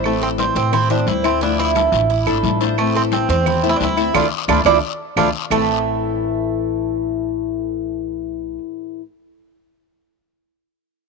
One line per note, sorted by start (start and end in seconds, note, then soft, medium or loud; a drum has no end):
0.00 0.49 A1 medium
0.00 0.72 E3 medium
0.00 long guiro medium
0.04 0.72 A3 medium
0.04 0.21 A3 medium
0.04 0.72 C4 medium
0.04 0.73 E4 medium
0.04 claves medium
0.21 0.28 C4 medium
0.21 0.55 A4 medium
0.21 high conga soft
0.38 0.55 C4 medium
0.38 high conga loud
0.38 short guiro medium
0.55 1.03 A2 loud
0.55 0.72 C4 medium
0.55 0.72 C5 medium
0.55 high conga soft
0.55 short guiro medium
0.73 0.90 C4 medium
0.73 0.89 E4 medium
0.73 muted nylon-string guitar stroke medium
0.73 high conga soft
0.73 low conga medium
0.73 long guiro medium
0.73 claves medium
0.90 1.07 A3 soft
0.90 1.07 C4 medium
0.90 1.06 D4 medium
0.90 1.06 E4 medium
0.90 1.23 C5 medium
0.90 high conga soft
0.90 low conga medium
1.06 1.86 D2 loud
1.06 1.23 E3 soft
1.06 1.24 A3 medium
1.06 1.24 C4 soft
1.06 1.23 E4 medium
1.06 high conga medium
1.06 short guiro medium
1.24 1.41 A3 medium
1.24 1.41 C4 medium
1.24 1.42 C4 medium
1.24 1.40 E4 medium
1.24 high conga soft
1.24 short guiro medium
1.24 claves medium
1.41 2.09 D3 medium
1.41 2.09 F3 medium
1.41 2.10 A3 medium
1.41 1.59 D4 medium
1.41 2.09 D4 medium
1.41 1.74 E4 medium
1.41 2.10 E4 medium
1.41 high conga soft
1.41 long guiro medium
1.59 2.58 E4 loud
1.59 high conga soft
1.75 2.09 A4 medium
1.75 high conga loud
1.75 short guiro medium
1.75 claves medium
1.92 2.24 A1 loud
1.92 high conga soft
1.92 short guiro medium
2.10 2.26 E4 medium
2.10 muted nylon-string guitar stroke medium
2.10 high conga soft
2.10 long guiro medium
2.26 2.42 G#1 medium
2.26 2.43 F3 medium
2.26 2.44 A3 medium
2.26 2.43 D4 medium
2.26 2.43 E4 medium
2.26 2.60 A4 medium
2.26 high conga soft
2.26 claves medium
2.43 3.23 A1 loud
2.43 2.60 F3 soft
2.43 2.61 A3 soft
2.43 2.60 D4 medium
2.43 2.59 E4 medium
2.43 high conga medium
2.43 short guiro medium
2.61 2.77 F3 medium
2.61 2.77 A3 medium
2.61 2.78 D4 medium
2.61 2.77 E4 medium
2.61 2.94 C5 medium
2.61 short guiro medium
2.78 3.46 E3 medium
2.78 2.96 A3 loud
2.78 3.46 A3 medium
2.78 3.46 C4 medium
2.78 3.47 E4 medium
2.78 long guiro medium
2.78 claves medium
2.95 3.01 C4 loud
2.95 3.28 A4 medium
2.95 high conga soft
3.12 3.28 C4 loud
3.12 high conga loud
3.12 short guiro medium
3.29 3.77 E2 loud
3.29 3.61 C4 loud
3.29 3.46 C5 medium
3.29 high conga soft
3.29 short guiro medium
3.46 3.63 E4 medium
3.46 muted nylon-string guitar stroke medium
3.46 high conga soft
3.46 low conga medium
3.46 long guiro medium
3.46 claves medium
3.63 3.79 A3 medium
3.63 3.80 C4 medium
3.63 3.80 E4 medium
3.63 3.97 C5 medium
3.69 3.76 E4 loud
3.76 3.97 E3 soft
3.76 3.83 D4 medium
3.80 4.12 D2 loud
3.80 3.97 A3 soft
3.80 3.97 C4 medium
3.80 3.96 E4 medium
3.80 4.13 E4 loud
3.80 high conga medium
3.80 short guiro medium
3.97 4.13 A3 medium
3.97 4.14 C4 medium
3.97 4.14 E4 medium
3.97 high conga soft
3.97 short guiro medium
3.97 claves medium
4.14 4.27 D2 loud
4.14 4.26 F3 loud
4.14 4.25 A3 loud
4.14 4.25 D4 loud
4.14 4.26 D4 medium
4.14 4.26 E4 medium
4.14 4.26 F4 loud
4.14 4.26 A4 loud
4.14 4.26 D5 medium
4.14 low conga loud
4.14 long guiro loud
4.14 claves loud
4.48 4.61 D2 loud
4.48 4.59 F3 loud
4.48 4.60 A3 loud
4.48 4.60 D4 medium
4.48 4.60 D4 loud
4.48 4.60 E4 medium
4.48 4.60 F4 medium
4.48 4.60 A4 loud
4.48 4.60 D5 medium
4.48 low conga loud
4.48 long guiro loud
4.48 claves loud
4.65 4.78 D2 loud
4.65 4.77 F3 loud
4.65 4.77 A3 loud
4.65 4.77 D4 loud
4.65 4.77 D4 medium
4.65 4.77 E4 loud
4.65 4.77 F4 medium
4.65 4.77 A4 loud
4.65 4.77 D5 loud
4.65 low conga loud
4.65 long guiro loud
4.65 claves loud
5.16 5.30 D2 loud
5.16 5.28 F3 loud
5.16 5.28 A3 medium
5.16 5.28 D4 medium
5.16 5.29 D4 loud
5.16 5.28 E4 medium
5.16 5.28 F4 loud
5.16 5.28 A4 medium
5.16 5.28 D5 medium
5.16 low conga loud
5.16 long guiro loud
5.16 claves loud
5.50 8.57 A1 medium
5.50 9.00 A2 medium
5.50 9.01 E3 medium
5.50 8.57 A3 medium
5.50 8.58 A3 medium
5.50 9.02 A3 medium
5.50 9.03 C4 medium
5.50 8.58 E4 medium
5.50 9.03 E4 medium
5.50 8.58 A4 medium
5.50 low conga medium
5.50 long guiro loud
5.50 claves loud